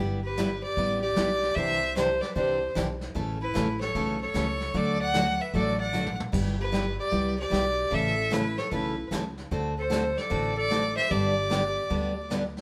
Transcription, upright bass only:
0.00 0.61 G1 medium
0.77 1.11 A1 medium
1.17 1.51 B1 medium
1.57 2.20 C2 medium
2.36 2.70 C2 medium
2.76 3.09 B1 medium
3.15 3.47 A1 medium
3.55 3.89 A1 medium
3.95 4.29 B1 medium
4.34 4.68 C#2 medium
4.74 5.38 D2 medium
5.54 6.17 A1 medium
6.33 6.97 G1 medium
7.12 7.46 C2 medium
7.52 7.86 B1 medium
7.92 8.56 A1 medium
8.72 9.06 B1 medium
9.11 9.45 C#2 medium
9.51 10.15 D2 medium
10.31 10.95 A1 medium
11.11 11.75 G1 medium
11.91 12.54 D2 medium

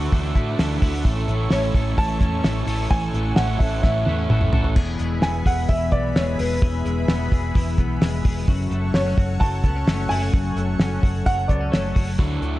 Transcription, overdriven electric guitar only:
0.00 0.11 A3 medium
0.00 0.13 D4 medium
0.00 0.12 F#4 medium
0.12 0.35 E3 medium
0.12 0.36 A3 medium
0.12 0.36 D4 medium
0.12 0.34 F#4 medium
0.36 0.59 A3 medium
0.36 0.59 D4 medium
0.36 0.59 F#4 medium
0.59 0.82 D3 medium
0.59 0.82 E3 medium
0.59 0.83 A3 medium
0.59 0.82 D4 medium
0.59 0.81 F#4 medium
0.82 1.05 A3 medium
0.82 1.06 D4 medium
0.82 1.05 F#4 medium
1.05 1.28 A2 medium
1.05 1.28 E3 medium
1.05 1.29 A3 medium
1.05 1.29 C#4 loud
1.05 1.27 E4 loud
1.28 1.51 A3 soft
1.28 1.51 C#4 medium
1.28 1.51 E4 medium
1.51 1.74 A2 medium
1.51 1.75 E3 medium
1.51 1.75 A3 medium
1.51 1.75 C#4 medium
1.51 1.74 E4 medium
1.75 1.97 A3 soft
1.75 1.98 C#4 medium
1.75 1.98 E4 medium
1.97 2.21 E3 medium
1.97 2.21 A3 medium
1.97 2.20 C#4 medium
1.97 2.18 E4 medium
2.19 2.43 A3 soft
2.19 2.43 C#4 soft
2.19 2.44 E4 medium
2.43 2.67 A2 medium
2.43 2.67 E3 medium
2.43 2.67 A3 medium
2.43 2.66 C#4 medium
2.43 2.65 E4 medium
2.66 2.89 A3 soft
2.66 2.90 C#4 medium
2.66 2.90 E4 medium
2.89 3.13 A2 medium
2.89 3.14 E3 medium
2.89 3.14 A3 medium
2.89 3.14 C#4 medium
2.89 3.12 E4 medium
3.13 3.36 A3 soft
3.13 3.37 C#4 soft
3.13 3.37 E4 medium
3.36 3.60 A2 medium
3.36 3.60 E3 medium
3.36 3.60 A3 medium
3.36 3.59 C#4 medium
3.36 3.58 E4 loud
3.59 3.82 A3 medium
3.59 3.83 C#4 medium
3.59 3.83 E4 medium
3.82 4.06 E3 medium
3.82 4.07 A3 medium
3.82 4.06 C#4 medium
3.82 4.04 E4 medium
4.05 4.29 A3 soft
4.05 4.30 C#4 soft
4.05 4.29 E4 medium
4.30 4.53 A2 medium
4.30 4.53 E3 medium
4.30 4.54 A3 medium
4.30 4.52 C#4 medium
4.30 4.51 E4 medium
4.52 4.78 A3 soft
4.52 4.77 C#4 soft
4.52 4.76 E4 medium
12.18 12.42 D3 medium
12.18 12.42 F#3 medium
12.18 12.42 A3 loud
12.18 12.40 E4 loud
12.41 12.59 F#3 medium
12.41 12.59 A3 medium
12.41 12.59 E4 medium

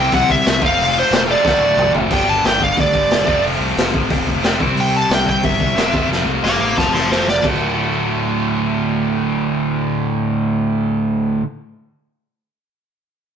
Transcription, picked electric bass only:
0.12 0.24 C2 loud
0.29 0.40 C2 loud
0.46 0.57 C2 medium
0.62 0.74 F1 loud
0.78 1.01 F1 loud
1.11 1.34 E1 loud
1.45 1.56 D1 loud
1.61 1.73 D1 medium
1.77 1.89 C2 medium
1.93 2.05 F#1 medium
2.10 2.38 G1 loud
2.44 2.71 G1 medium
2.77 2.91 D2 medium
2.94 3.07 G1 medium
3.09 3.23 E1 medium
3.27 3.41 F1 medium
3.43 3.57 F1 loud
3.59 3.73 C2 medium
3.76 3.90 F1 medium
3.94 4.07 A1 medium
4.11 4.24 F1 medium
4.27 4.40 F1 medium
4.43 4.57 F1 medium
4.60 4.74 C2 medium
4.76 5.03 C2 loud
5.09 5.37 C2 medium
5.43 5.57 G1 medium
5.60 5.74 C2 medium
5.75 5.90 E1 medium
5.94 6.07 F1 medium
6.09 6.23 F1 medium
6.25 6.39 C2 medium
6.42 6.56 F1 medium
6.59 6.73 A1 medium
6.77 6.91 F1 medium
6.92 7.06 F1 medium
7.10 7.24 F1 medium
7.26 7.40 F1 medium
7.43 11.40 D1 loud

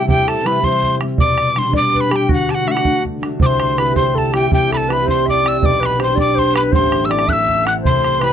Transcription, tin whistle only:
0.09 0.30 G5 loud
0.28 0.48 A5 medium
0.47 0.66 B5 medium
0.64 0.95 C6 medium
1.20 1.60 D6 loud
1.58 1.75 C6 loud
1.77 1.97 D6 loud
1.97 2.02 D6 medium
2.01 2.17 B5 medium
2.16 2.32 G5 medium
2.34 2.52 F#5 medium
2.51 2.69 F#5 medium
2.51 2.55 A5 medium
2.68 2.72 E5 medium
2.68 3.03 F#5 medium
3.43 3.80 C6 loud
3.43 3.47 D6 medium
3.79 3.96 B5 medium
3.96 4.20 C6 medium
4.18 4.35 A5 medium
4.36 4.51 G5 medium
4.54 4.71 G5 medium
4.73 4.94 A5 medium
4.73 4.78 B5 medium
4.93 5.09 B5 medium
5.10 5.27 C6 medium
5.29 5.50 D6 medium
5.48 5.67 E6 loud
5.66 5.87 D6 loud
5.86 6.02 B5 loud
6.04 6.18 C6 medium
6.21 6.40 D6 medium
6.39 6.56 C6 loud
6.57 6.62 B5 medium
6.75 7.07 C6 loud
7.05 7.13 E6 medium
7.11 7.31 D6 loud
7.29 7.66 E6 loud
7.29 7.34 F#6 medium
7.68 7.74 F#6 loud
7.86 8.26 C6 loud
8.24 8.33 B5 loud

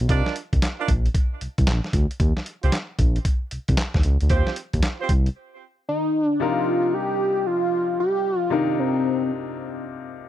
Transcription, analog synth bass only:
0.01 0.07 B1 medium
0.09 0.22 C2 loud
0.53 0.60 C2 medium
0.89 1.08 A#1 medium
1.41 1.48 C2 soft
1.59 1.65 C2 medium
1.68 1.80 A#1 medium
1.94 2.06 D2 medium
2.20 2.33 D#2 loud
2.64 2.70 C2 medium
2.99 3.19 A#1 medium
3.52 3.59 C2 soft
3.69 3.76 C2 medium
3.95 4.02 D#2 medium
4.05 4.17 C#2 medium
4.22 4.29 D2 medium
4.30 4.43 D#2 loud
4.74 4.81 D#2 medium
5.09 5.29 C2 medium

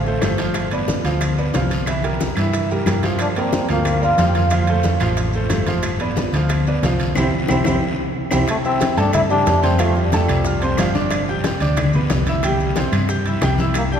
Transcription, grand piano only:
0.06 0.19 A3 medium
0.06 0.20 A4 medium
0.06 0.20 C5 medium
0.23 0.36 A3 medium
0.23 0.36 A4 medium
0.23 0.37 C5 medium
0.39 0.66 F3 medium
0.39 0.66 F4 medium
0.39 0.66 F5 medium
0.72 0.99 B3 medium
0.72 0.99 B4 medium
0.72 0.99 D5 medium
1.05 1.32 F3 medium
1.05 1.32 F4 medium
1.05 1.32 F5 medium
1.38 1.51 B3 medium
1.38 1.51 B4 medium
1.38 1.52 D5 medium
1.53 1.81 F3 medium
1.53 1.81 F4 medium
1.53 1.81 F5 medium
1.88 2.01 E3 medium
1.88 2.01 E4 medium
1.88 2.01 E5 medium
2.04 2.31 G3 medium
2.04 2.31 G4 medium
2.04 2.31 A#4 medium
2.38 2.65 E3 medium
2.38 2.65 E4 medium
2.38 2.65 E5 medium
2.70 2.84 G3 medium
2.70 2.84 G4 medium
2.70 2.84 A#4 medium
2.87 3.00 G3 medium
2.87 3.00 G4 medium
2.87 3.00 A#4 medium
3.03 3.30 F3 medium
3.03 3.30 F4 medium
3.03 3.31 F5 medium
3.37 3.64 A#3 medium
3.37 3.64 A#4 medium
3.37 3.64 D5 medium
3.69 3.96 F3 medium
3.69 3.96 F4 medium
3.69 3.96 F5 medium
4.01 4.15 A#3 medium
4.01 4.15 A#4 medium
4.01 4.15 D5 medium
4.19 4.46 F3 medium
4.19 4.46 F4 medium
4.19 4.46 F5 medium
4.52 4.65 F3 medium
4.52 4.65 F4 medium
4.52 4.65 F5 medium
4.69 4.96 A3 medium
4.69 4.96 A4 medium
4.69 4.96 C5 medium
5.01 5.28 F3 medium
5.01 5.28 F4 medium
5.01 5.28 F5 medium
5.34 5.48 A3 medium
5.34 5.48 A4 medium
5.34 5.48 C5 medium
5.51 5.65 A3 medium
5.51 5.65 A4 medium
5.51 5.65 C5 medium
5.67 5.94 F3 medium
5.67 5.94 F4 medium
5.67 5.95 F5 medium
6.01 6.27 B3 medium
6.01 6.27 B4 medium
6.01 6.28 D5 medium
6.35 6.61 F3 medium
6.35 6.61 F4 medium
6.35 6.62 F5 medium
6.67 6.80 B3 medium
6.67 6.80 B4 medium
6.67 6.81 D5 medium
6.84 7.10 F3 medium
6.84 7.11 F4 medium
6.84 7.11 F5 medium
7.17 7.27 C4 medium
7.17 7.27 E4 medium
7.17 7.27 G4 medium
7.49 7.60 C4 medium
7.49 7.60 E4 medium
7.49 7.60 G4 medium
7.66 7.76 C4 medium
7.66 7.76 E4 medium
7.66 7.76 G4 medium
8.32 8.42 C4 loud
8.32 8.42 E4 medium
8.32 8.42 G4 loud
8.65 8.91 E4 medium
8.65 8.92 E5 medium
8.65 8.92 E6 medium
8.97 9.24 A3 medium
8.97 9.24 A4 medium
8.97 9.24 A5 medium
9.29 9.56 G3 medium
9.29 9.57 G4 medium
9.29 9.57 G5 medium
9.63 9.76 C4 medium
9.63 9.76 C5 medium
9.63 9.77 C6 medium
9.78 10.06 F3 medium
9.78 10.06 F4 medium
9.78 10.06 F5 medium
10.13 10.40 A3 medium
10.13 10.40 A4 medium
10.13 10.40 A5 medium
10.47 10.60 F4 medium
10.47 10.60 F5 medium
10.47 10.60 F6 medium
10.62 10.75 C4 medium
10.62 10.76 C5 medium
10.62 10.76 C6 medium
10.79 10.92 F3 medium
10.79 10.93 F4 medium
10.79 10.93 F5 medium
10.94 11.21 D4 medium
10.94 11.22 D5 medium
10.94 11.22 D6 medium
11.29 11.55 G4 medium
11.29 11.55 G5 medium
11.29 11.56 G6 medium
11.61 11.88 D4 medium
11.61 11.88 D5 medium
11.61 11.88 D6 medium
11.95 12.21 B3 medium
11.95 12.21 B4 medium
11.95 12.22 B5 medium
12.28 12.41 E4 medium
12.28 12.41 E5 medium
12.28 12.41 E6 medium
12.44 12.71 G3 medium
12.44 12.71 G4 medium
12.44 12.71 G5 medium
12.78 13.04 C4 medium
12.78 13.04 C5 medium
12.78 13.04 C6 medium
13.09 13.23 G4 medium
13.09 13.23 G5 medium
13.09 13.23 G6 medium
13.26 13.40 E4 medium
13.26 13.40 E5 medium
13.26 13.40 E6 medium
13.43 13.56 G3 medium
13.43 13.56 G4 medium
13.43 13.56 G5 medium
13.59 13.86 E4 medium
13.59 13.86 E5 medium
13.59 13.87 E6 medium
13.91 14.00 G4 medium
13.91 14.00 G5 medium
13.91 14.00 G6 medium

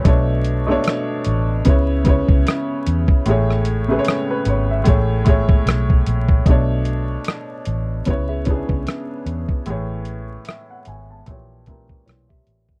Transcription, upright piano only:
0.04 0.57 B2 medium
0.04 0.58 A3 medium
0.04 0.58 D4 medium
0.08 0.59 C#5 medium
0.66 1.65 B2 medium
0.66 1.66 A3 medium
0.66 1.67 D4 medium
0.71 1.67 C#5 loud
1.65 2.00 C#3 medium
1.65 2.01 B3 medium
1.65 2.01 E4 medium
1.69 2.02 C#5 loud
2.04 3.09 C#3 medium
2.04 3.10 B3 medium
2.04 3.11 E4 medium
2.09 3.11 C#5 loud
3.26 3.78 A2 medium
3.26 3.79 A3 medium
3.26 3.80 G#4 medium
3.31 3.80 C#5 medium
3.88 4.86 C#3 medium
3.88 4.84 A3 medium
3.88 4.85 G#4 medium
3.92 3.96 B4 medium
3.99 4.11 C#5 loud
4.31 4.46 B4 medium
4.49 4.69 C#5 medium
4.71 5.08 E5 medium
4.84 5.20 A2 medium
4.84 5.20 A3 medium
4.84 5.21 G#4 medium
4.88 5.22 C#5 medium
5.25 6.29 A2 medium
5.25 6.30 A3 medium
5.25 6.31 G#4 medium
5.29 6.31 C#5 loud
6.46 7.84 B2 medium
6.46 7.84 A3 medium
6.46 7.85 D4 medium
6.51 7.86 C#5 medium
8.06 8.41 C#3 medium
8.06 8.41 B3 medium
8.06 8.42 E4 medium
8.10 8.43 C#5 medium
8.46 9.50 C#3 medium
8.46 9.51 B3 medium
8.46 8.55 D4 medium
8.50 9.52 G#4 medium
8.55 9.55 E4 medium
9.66 11.04 A2 medium
9.66 11.04 E3 medium
9.66 11.05 G#4 medium
9.66 11.06 C#5 medium
10.48 10.68 E5 medium
10.70 10.86 F#5 medium
10.88 11.08 G#5 medium
11.10 11.47 A5 medium
11.26 11.61 A#2 medium
11.26 11.61 E3 medium
11.26 11.62 G4 medium
11.30 11.63 C#5 medium
11.67 12.70 A#2 medium
11.67 12.71 E3 medium
11.67 12.72 G4 medium
11.67 12.72 A#4 medium

